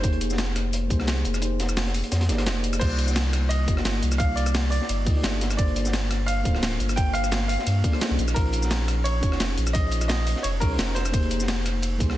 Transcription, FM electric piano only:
0.01 0.87 A#3 loud
0.01 0.88 D#4 medium
0.01 0.88 G4 medium
0.01 0.89 G#4 medium
0.06 0.90 C5 loud
0.88 1.39 A#3 medium
0.88 1.40 D#4 medium
0.88 1.41 G4 medium
0.88 1.41 G#4 medium
0.93 1.42 C5 loud
1.40 2.26 A#3 medium
1.40 2.27 D#4 medium
1.40 2.27 G4 medium
1.40 2.28 G#4 medium
1.45 2.28 C5 loud
2.28 2.36 A#3 medium
2.28 2.36 D#4 medium
2.28 2.36 G4 medium
2.28 2.36 G#4 medium
2.28 2.37 D5 loud
2.37 2.44 A#3 loud
2.37 2.44 D#4 medium
2.37 2.45 G4 medium
2.37 2.45 G#4 medium
2.37 2.45 C5 loud
2.45 2.78 A#3 medium
2.45 2.79 D#4 medium
2.45 2.80 G#4 medium
2.45 2.80 D#5 medium
2.79 3.64 A#3 loud
2.79 3.65 D#4 medium
2.79 3.66 F4 medium
2.79 3.67 G4 medium
2.83 3.67 D5 loud
3.66 4.17 A#3 loud
3.66 4.17 D#4 medium
3.66 4.18 F4 medium
3.66 4.19 G4 medium
3.70 4.19 D#5 loud
4.18 5.04 A#3 medium
4.18 5.04 D#4 medium
4.18 5.05 F4 medium
4.18 5.05 G4 medium
4.22 5.06 D5 medium
5.05 5.13 A#3 loud
5.05 5.13 D#4 medium
5.05 5.14 F4 medium
5.05 5.14 G4 medium
5.05 5.14 D#5 loud
5.15 5.21 A#3 loud
5.15 5.22 D#4 medium
5.15 5.22 F4 medium
5.15 5.22 G4 medium
5.15 5.23 D5 loud
5.23 5.55 A#3 medium
5.23 5.56 D4 medium
5.23 5.57 F4 medium
5.23 5.57 A4 medium
5.23 5.57 E5 medium
5.56 6.42 A#3 medium
5.56 6.43 D4 medium
5.56 6.43 F4 medium
5.56 6.44 A4 medium
5.61 6.45 C5 loud
6.43 6.94 A#3 loud
6.43 6.95 D4 medium
6.43 6.96 F4 medium
6.43 6.96 A4 medium
6.48 6.97 C5 loud
6.95 7.81 A#3 medium
6.95 7.82 D4 medium
6.95 7.82 F4 medium
6.95 7.83 A4 medium
7.00 7.83 C5 medium
7.83 7.91 A#3 loud
7.83 7.91 D4 medium
7.83 7.91 F4 medium
7.83 7.91 A4 medium
7.83 7.92 D5 loud
7.92 7.99 A#3 loud
7.92 7.99 D4 medium
7.92 8.00 F4 medium
7.92 8.00 A4 medium
7.92 8.00 C5 loud
8.00 8.33 C#4 medium
8.00 8.34 D#4 medium
8.00 8.34 F4 medium
8.00 8.34 G#4 medium
8.34 9.20 C#4 medium
8.34 9.20 D#4 medium
8.34 9.21 F4 medium
8.34 9.21 G#4 medium
8.38 9.22 C5 loud
9.21 9.72 C#4 loud
9.21 9.72 D#4 medium
9.21 9.73 F4 medium
9.21 9.74 G#4 medium
9.25 9.74 C#5 loud
9.73 10.59 C#4 medium
9.73 10.59 D#4 medium
9.73 10.60 F4 medium
9.73 10.60 G#4 medium
9.77 10.61 C5 medium
10.60 10.68 C#4 medium
10.60 10.68 D#4 medium
10.60 10.69 F4 medium
10.60 10.69 G#4 medium
10.60 10.69 C#5 loud
10.70 10.76 C#4 loud
10.70 10.77 D#4 medium
10.70 10.77 F4 medium
10.70 10.77 G#4 medium
10.70 10.78 C5 loud
10.78 11.11 C#4 medium
10.78 11.11 D#4 medium
10.78 11.12 G#4 medium
10.78 11.12 D#5 medium
11.11 11.97 A#3 loud
11.11 11.98 D#4 medium
11.11 11.98 G4 medium
11.11 11.99 G#4 medium
11.16 12.00 C5 loud
11.98 12.18 A#3 loud
11.98 12.18 D#4 medium
11.98 12.18 G4 medium
11.98 12.18 G#4 medium
12.03 12.18 C5 loud

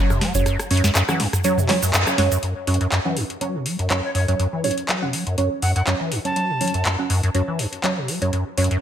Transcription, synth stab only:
0.35 0.44 F#3 medium
0.35 0.44 C#4 medium
0.35 0.44 C#5 loud
0.71 0.82 F#3 loud
0.71 0.82 C#4 loud
0.71 0.82 C#5 loud
1.09 1.15 F#3 medium
1.09 1.15 C#4 medium
1.09 1.15 F#5 loud
1.44 1.52 F#3 loud
1.44 1.52 C#4 medium
1.44 1.52 C#5 loud
1.69 1.76 F#3 loud
1.69 1.76 C#4 medium
1.69 1.76 C#5 loud
2.07 2.13 F#3 medium
2.07 2.13 C#4 medium
2.07 2.13 C#5 loud
2.18 2.30 F#3 loud
2.18 2.30 C#4 medium
2.18 2.30 C#5 loud
2.67 2.79 F#3 loud
2.67 2.79 C#4 medium
2.67 2.79 C#5 loud
3.05 3.11 F#3 medium
3.05 3.11 C#4 medium
3.05 3.11 F#5 loud
3.41 3.48 F#3 loud
3.41 3.48 C#4 medium
3.41 3.48 C#5 loud
3.90 3.97 F#3 medium
3.90 3.97 C#4 medium
3.90 3.97 C#5 loud
4.28 4.38 F#3 medium
4.28 4.38 C#4 medium
4.28 4.38 C#5 medium
4.64 4.75 F#3 loud
4.64 4.75 C#4 medium
4.64 4.75 C#5 loud
5.02 5.08 F#3 medium
5.02 5.08 C#4 medium
5.02 5.08 F#5 loud
5.38 5.45 F#3 loud
5.38 5.45 C#4 medium
5.38 5.45 C#5 loud
5.87 5.94 F#3 medium
5.87 5.94 C#4 medium
5.87 5.94 C#5 loud
6.25 6.35 F#3 medium
6.25 6.35 C#4 medium
6.25 6.35 C#5 loud
6.61 6.72 F#3 loud
6.61 6.72 C#4 medium
6.61 6.72 C#5 loud
6.99 7.05 F#3 medium
6.99 7.05 C#4 medium
6.99 7.05 F#5 loud
7.35 7.42 F#3 medium
7.35 7.42 C#4 medium
7.35 7.42 C#5 loud
7.84 7.91 F#3 medium
7.84 7.91 C#4 medium
7.84 7.91 C#5 loud
8.22 8.31 F#3 medium
8.22 8.31 C#4 medium
8.22 8.31 C#5 loud
8.58 8.69 F#3 loud
8.58 8.69 C#4 medium
8.58 8.69 C#5 loud

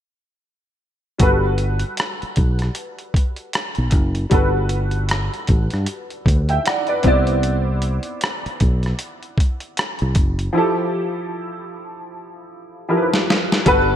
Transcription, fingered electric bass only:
1.21 1.83 G1 medium
2.23 muted fingered electric bass stroke soft
2.38 2.69 B1 medium
3.78 3.94 B1 medium
3.94 4.24 F#1 medium
4.33 5.28 G1 medium
5.50 5.67 A1 medium
5.73 5.86 G2 medium
6.27 6.58 D2 medium
7.06 7.98 C2 medium
8.46 muted fingered electric bass stroke soft
8.62 8.92 B1 medium
10.02 10.14 C2 medium
10.17 10.48 F#1 medium
13.68 13.96 G1 medium

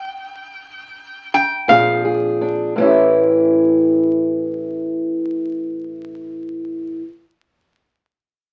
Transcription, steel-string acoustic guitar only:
1.68 2.33 A#2 medium
1.68 2.73 F3 medium
1.68 2.73 C4 medium
1.68 2.40 D4 medium
1.68 2.03 G#4 medium
2.05 2.73 G#4 medium
2.41 2.73 D4 medium
2.76 7.00 A2 medium
2.76 7.03 E3 medium
2.80 7.05 C#4 medium
2.80 7.07 E4 medium
2.84 7.09 G4 medium

